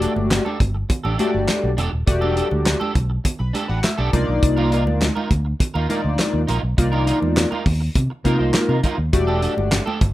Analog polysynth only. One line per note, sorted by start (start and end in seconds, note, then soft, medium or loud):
0.00 0.42 A3 medium
0.00 0.42 F#4 medium
0.00 0.42 G4 medium
0.00 0.42 D5 medium
1.19 1.71 A3 medium
1.19 1.71 F#4 medium
1.19 1.71 G4 medium
1.19 1.72 D5 loud
2.06 2.76 A3 medium
2.06 2.77 F#4 medium
2.06 2.77 G4 medium
2.06 2.77 D5 medium
3.39 3.53 B5 medium
3.54 3.68 A5 medium
3.69 3.83 F#5 medium
3.84 3.98 E5 medium
3.98 4.12 D5 medium
4.13 5.07 A#3 loud
4.13 5.07 D#4 medium
4.13 5.07 F4 medium
4.13 5.08 D5 loud
5.89 6.42 A#3 medium
5.89 6.42 D#4 medium
5.89 6.42 F4 medium
5.89 6.42 D5 medium
6.78 7.47 A#3 medium
6.78 7.48 D#4 medium
6.78 7.48 F4 medium
6.78 7.48 D5 medium
8.24 8.77 A#3 medium
8.24 8.77 D#4 medium
8.24 8.77 F4 medium
8.24 8.77 A#4 medium
9.13 9.83 A3 medium
9.13 9.83 F#4 medium
9.13 9.83 G4 medium
9.13 9.83 D5 loud